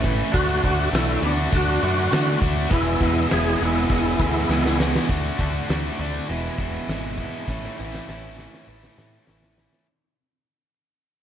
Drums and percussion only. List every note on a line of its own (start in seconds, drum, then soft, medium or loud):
0.04 kick medium
0.34 kick loud
0.34 open hi-hat medium
0.64 kick medium
0.94 snare loud
0.94 open hi-hat medium
1.53 kick loud
1.53 open hi-hat medium
2.12 snare loud
2.12 open hi-hat medium
2.42 kick loud
2.70 kick loud
2.70 open hi-hat medium
3.01 kick medium
3.30 snare loud
3.30 open hi-hat medium
3.89 kick loud
3.89 open hi-hat medium
4.19 kick medium
4.50 snare medium
4.65 snare medium
4.80 snare loud
4.95 snare medium
5.09 kick loud
5.09 open hi-hat soft
5.39 kick medium
5.69 snare loud
5.69 open hi-hat medium
6.29 open hi-hat soft
6.58 kick medium
6.88 snare loud
6.88 open hi-hat soft
7.18 kick medium
7.48 kick loud
7.48 snare soft
7.65 snare soft
7.94 snare soft
8.09 snare medium
8.38 snare medium
8.54 snare medium
8.83 snare medium
8.98 snare medium
9.27 snare medium
9.43 snare medium
9.58 snare medium
9.73 snare medium